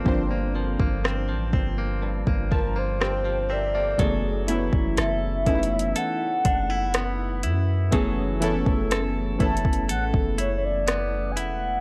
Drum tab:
HH |------------------------------------------------|x-----x-----x-----x-x-x-x-----x-----x-----x-----|x-----x-----x-----x-x-x-x-----x-----x-----x-----|
SD |------------r-----------------------r-----------|------------r-----------------------r-----------|------------r-----------------------r-----------|
BD |o--------o--------o--------o--o-----------------|o--------o--------o-----------o-----------------|o--------o--------o--o-----o--------------------|